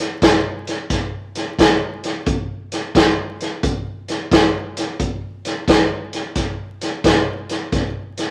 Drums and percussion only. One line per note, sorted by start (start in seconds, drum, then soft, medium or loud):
0.22 kick medium
0.22 snare loud
0.22 closed hi-hat medium
0.67 snare soft
0.67 closed hi-hat medium
0.90 kick medium
0.90 snare soft
0.90 closed hi-hat medium
1.35 snare soft
1.35 closed hi-hat medium
1.59 kick medium
1.59 snare loud
1.59 closed hi-hat medium
2.04 snare soft
2.04 closed hi-hat medium
2.26 kick medium
2.26 closed hi-hat medium
2.72 snare soft
2.72 closed hi-hat medium
2.95 kick medium
2.95 snare loud
2.95 closed hi-hat medium
3.40 snare soft
3.40 closed hi-hat soft
3.63 kick medium
3.63 closed hi-hat medium
4.08 snare soft
4.08 closed hi-hat medium
4.32 kick medium
4.32 snare loud
4.32 closed hi-hat medium
4.77 snare soft
4.77 closed hi-hat medium
4.99 kick medium
4.99 closed hi-hat medium
5.45 snare soft
5.45 closed hi-hat medium
5.68 kick medium
5.68 snare loud
5.68 closed hi-hat medium
6.13 snare soft
6.13 closed hi-hat medium
6.35 kick medium
6.35 snare soft
6.35 closed hi-hat medium
6.81 snare soft
6.81 closed hi-hat medium
7.04 kick medium
7.04 snare medium
7.04 closed hi-hat medium
7.49 snare soft
7.49 closed hi-hat medium
7.72 kick medium
7.72 snare soft
7.72 closed hi-hat medium
8.17 snare soft
8.17 closed hi-hat medium